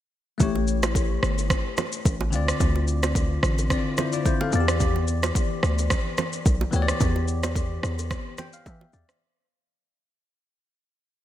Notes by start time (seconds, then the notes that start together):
0.38 A1 A3 E4 G4, kick, low conga, shaker
0.43 C#5
0.55 low bongo
0.67 shaker
0.83 cross-stick, low bongo, shaker
0.95 kick, high bongo, shaker
1.23 G1, cross-stick, shaker
1.38 high bongo, shaker
1.50 kick, cross-stick, low conga, shaker
1.77 cross-stick, high bongo, low bongo, low conga, shaker
1.92 shaker
2.06 A1, kick, high bongo, shaker
2.21 low bongo
2.31 D2 D3 C4 F4, shaker
2.36 D5
2.48 cross-stick, shaker
2.60 D2, kick, low conga, shaker
2.76 low bongo
2.88 shaker
3.03 cross-stick, low bongo, shaker
3.15 kick, high bongo, shaker
3.43 A1, cross-stick, shaker
3.58 high bongo, shaker
3.69 D3 C4 E4 D5, kick, cross-stick, low conga, shaker
3.77 F4
3.97 E4 C5, cross-stick, high bongo, low bongo, low conga, shaker
4.12 F4 D5, shaker
4.26 E4 C5, kick, high bongo, shaker
4.41 A4 F5, low bongo
4.51 E2 E3 B3 F4, shaker
4.56 D5
4.60 G4
4.68 cross-stick, shaker
4.80 kick, low conga, shaker
4.96 low bongo
5.08 shaker
5.23 cross-stick, low bongo, shaker
5.35 kick, high bongo, shaker
5.63 D2, cross-stick, shaker
5.78 high bongo, shaker
5.90 kick, cross-stick, low conga, shaker
6.17 cross-stick, high bongo, low bongo, low conga, shaker
6.33 shaker
6.46 B1, kick, high bongo, shaker
6.61 low bongo
6.71 D2 E3 B3 G4, shaker
6.76 C#5
6.82 D5
6.88 cross-stick, shaker
7.00 E2, kick, low conga, shaker
7.16 low bongo
7.28 shaker
7.43 cross-stick, low bongo, shaker
7.56 kick, high bongo, shaker
7.83 E2, cross-stick, shaker
7.99 high bongo, shaker
8.11 kick, cross-stick, low conga, shaker
8.38 G5, cross-stick, high bongo, low bongo, low conga, shaker
8.53 F5, shaker
8.66 E3 E5, kick, high bongo, shaker
8.81 low bongo
8.93 E2 D5, shaker
9.09 cross-stick, shaker